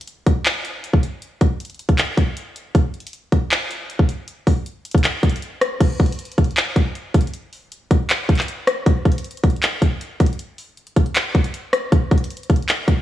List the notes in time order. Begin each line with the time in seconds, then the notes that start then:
0.01 closed hi-hat
0.07 closed hi-hat
0.26 kick, closed hi-hat
0.46 clap, closed hi-hat
0.65 closed hi-hat
0.84 closed hi-hat
0.93 kick
1.03 closed hi-hat
1.22 closed hi-hat
1.41 kick, closed hi-hat
1.60 closed hi-hat
1.65 closed hi-hat
1.70 closed hi-hat
1.75 closed hi-hat
1.79 closed hi-hat
1.89 kick, closed hi-hat
1.98 clap, closed hi-hat
2.17 kick, closed hi-hat
2.37 closed hi-hat
2.56 closed hi-hat
2.75 kick, closed hi-hat
2.94 closed hi-hat
3.00 closed hi-hat
3.07 closed hi-hat
3.13 closed hi-hat
3.32 kick, closed hi-hat
3.51 clap, closed hi-hat
3.70 closed hi-hat
3.90 closed hi-hat
3.99 kick
4.09 closed hi-hat
4.28 closed hi-hat
4.47 kick, open hi-hat
4.66 closed hi-hat
4.85 closed hi-hat
4.91 kick, closed hi-hat
4.98 closed hi-hat
5.04 clap, closed hi-hat
5.23 kick, closed hi-hat
5.30 closed hi-hat
5.36 closed hi-hat
5.43 closed hi-hat
5.62 cross-stick, closed hi-hat
5.81 kick, closed hi-hat, crash
6.00 kick, closed hi-hat
6.06 closed hi-hat
6.12 closed hi-hat
6.19 closed hi-hat
6.25 closed hi-hat
6.32 closed hi-hat
6.38 kick, closed hi-hat
6.44 closed hi-hat
6.51 closed hi-hat
6.57 clap, closed hi-hat
6.76 kick, closed hi-hat
6.95 closed hi-hat
7.14 kick, closed hi-hat
7.21 closed hi-hat
7.27 closed hi-hat
7.34 closed hi-hat
7.53 open hi-hat
7.72 closed hi-hat
7.91 kick, closed hi-hat
8.10 clap, closed hi-hat
8.29 kick, closed hi-hat
8.35 clap, closed hi-hat
8.42 closed hi-hat
8.48 closed hi-hat
8.67 cross-stick, closed hi-hat
8.86 kick, closed hi-hat
9.06 kick, closed hi-hat
9.12 closed hi-hat
9.18 closed hi-hat
9.25 closed hi-hat
9.31 closed hi-hat
9.37 closed hi-hat
9.44 kick, closed hi-hat
9.50 closed hi-hat
9.56 closed hi-hat
9.63 clap, closed hi-hat
9.82 kick, closed hi-hat
10.01 closed hi-hat
10.20 kick, closed hi-hat
10.26 closed hi-hat
10.33 closed hi-hat
10.39 closed hi-hat
10.58 open hi-hat
10.77 closed hi-hat
10.87 closed hi-hat
10.97 kick, closed hi-hat
11.06 closed hi-hat
11.16 clap, closed hi-hat
11.35 kick, closed hi-hat
11.44 closed hi-hat
11.54 closed hi-hat
11.73 cross-stick, closed hi-hat
11.92 kick, closed hi-hat
12.11 kick, closed hi-hat
12.18 closed hi-hat
12.24 closed hi-hat
12.30 closed hi-hat
12.37 closed hi-hat
12.43 closed hi-hat
12.49 kick, closed hi-hat
12.56 closed hi-hat
12.62 closed hi-hat
12.69 clap, closed hi-hat
12.88 kick, closed hi-hat